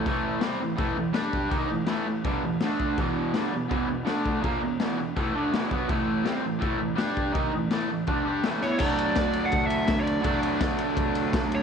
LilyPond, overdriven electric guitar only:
\new Staff \with { instrumentName = "Overdriven electric guitar" } { \clef bass \time 4/4 \key d \lydian \tempo 4 = 165 <a, e a>4 <c g c'>8 <a, e>8 <a, e a>8 <a, e>8 <g d' g'>4 | <dis ais dis'>8 <a, e>8 <a, e a>8 <a, e>8 <g, d g>8 <a, e>8 <d a d'>4 | <e, b, e>4 <g, d g>8 <e, b,>8 <e, b, e>8 <e, b,>8 <d a d'>4 | <ais, f ais>8 <e, b,>8 <e, b, e>8 <e, b,>8 <a, e a>8 <d a d'>8 <e, b, e>8 <b, fis b>8 |
<a, e a>4 <c g c'>8 <a, e>8 <a, e a>8 <a, e>8 <g d' g'>4 | <dis ais dis'>8 <a, e>8 <a, e a>8 <a, e>8 <d a d'>8 <g d' g'>8 <a, e a>8 <e b e'>8 | <d fis a d'>1 | <d fis a d'>1 | }